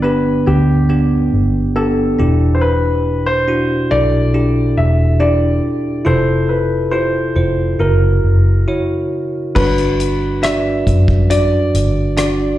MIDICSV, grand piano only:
0, 0, Header, 1, 2, 480
1, 0, Start_track
1, 0, Tempo, 860832
1, 1464, Time_signature, 4, 2, 24, 8
1, 3863, Tempo, 874636
1, 6967, End_track
2, 0, Start_track
2, 0, Title_t, "Grand piano"
2, 0, Program_c, 0, 0
2, 13, Note_on_c, 0, 71, 68
2, 241, Note_off_c, 0, 71, 0
2, 263, Note_on_c, 0, 67, 65
2, 722, Note_off_c, 0, 67, 0
2, 980, Note_on_c, 0, 69, 60
2, 1419, Note_on_c, 0, 72, 59
2, 1436, Note_off_c, 0, 69, 0
2, 1457, Note_on_c, 0, 71, 79
2, 1461, Note_off_c, 0, 72, 0
2, 1798, Note_off_c, 0, 71, 0
2, 1820, Note_on_c, 0, 72, 81
2, 2180, Note_on_c, 0, 74, 92
2, 2193, Note_off_c, 0, 72, 0
2, 2662, Note_on_c, 0, 76, 68
2, 2676, Note_off_c, 0, 74, 0
2, 2900, Note_on_c, 0, 74, 73
2, 2909, Note_off_c, 0, 76, 0
2, 3382, Note_on_c, 0, 72, 73
2, 3395, Note_off_c, 0, 74, 0
2, 3618, Note_on_c, 0, 71, 54
2, 3630, Note_off_c, 0, 72, 0
2, 3844, Note_off_c, 0, 71, 0
2, 3855, Note_on_c, 0, 72, 66
2, 4340, Note_on_c, 0, 70, 54
2, 4350, Note_off_c, 0, 72, 0
2, 5045, Note_off_c, 0, 70, 0
2, 5302, Note_on_c, 0, 71, 82
2, 5784, Note_on_c, 0, 76, 86
2, 5799, Note_off_c, 0, 71, 0
2, 6264, Note_on_c, 0, 74, 87
2, 6277, Note_off_c, 0, 76, 0
2, 6720, Note_off_c, 0, 74, 0
2, 6742, Note_on_c, 0, 74, 71
2, 6967, Note_off_c, 0, 74, 0
2, 6967, End_track
0, 0, End_of_file